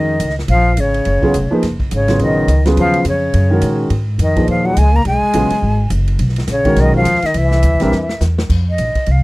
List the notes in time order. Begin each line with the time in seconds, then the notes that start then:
Already playing: F2 D#3 G#3 C#4 F#4 A#4 D#5
0.20 C#2, hi-hat pedal, ride
0.30 snare
0.39 snare
0.48 A#1 F3 F5, ride
0.77 G#1 C#3 C#5, hi-hat pedal, ride
0.94 ride
1.05 F#1, ride
1.22 C#3 F#3 B3 F4 G#4, muted upright bass stroke, kick
1.34 F1, hi-hat pedal, ride
1.51 F3 A#3 D#4 G#4 B4, muted upright bass stroke
1.63 F#1, snare, ride
1.80 kick
1.91 G#1 C#3 C#5, hi-hat pedal, ride
2.08 C#3 F#3 B3 F4 G#4, snare, ride
2.19 A#1 D#3 D#5, ride
2.48 C#2, hi-hat pedal, ride
2.65 C#3 F#3 B3 F4 G#4, snare, ride
2.76 D#2 F3 F5, ride
2.94 ride
3.05 F2 C#3, hi-hat pedal, ride
3.09 C#5
3.34 F#2, ride
3.50 D#3 G#3 C#4 F#4 A#4
3.61 A#2, hi-hat pedal, ride
3.90 G#2, ride
4.18 F2 D#3 D#5, hi-hat pedal, ride
4.36 A#2 F3 D#4 G#4 B4, kick, ride
4.47 D#2 F3 F5, ride
4.66 F#3 F#5
4.76 C#2 G#3 G#5, hi-hat pedal, ride
4.94 A#3 A#5
5.04 B1 G#3 G#5, ride
5.22 muted upright bass stroke
5.34 A#1 C#3 F#3 B3 F4 G#4, hi-hat pedal, ride
5.50 muted upright bass stroke, ride
5.62 G#1
5.90 F#1, hi-hat pedal, ride
6.08 ride
6.19 B1, ride
6.29 snare
6.36 snare, ride
6.47 A#1 C#3, snare, hi-hat pedal, ride
6.51 C#5
6.65 D#3 G#3 C#4 F#4 A#4, kick, ride
6.76 B1 D#3, snare, ride
6.80 D#5
6.94 F3 F5, kick
7.05 D#2, hi-hat pedal, ride
7.15 snare
7.22 D#3 D#5, muted upright bass stroke, snare, ride
7.34 C2 E3 E5, ride
7.51 snare
7.63 D2, hi-hat pedal, ride
7.73 C2
7.80 A#1 G3 C4 D4 E4 A#4, snare, ride
7.92 E2, snare
8.09 snare
8.21 E2, snare, hi-hat pedal
8.38 snare
8.50 F2, kick, crash
8.70 D#5
8.78 A#1, hi-hat pedal, ride
8.95 muted upright bass stroke, kick, ride
9.06 C2, ride
9.11 F5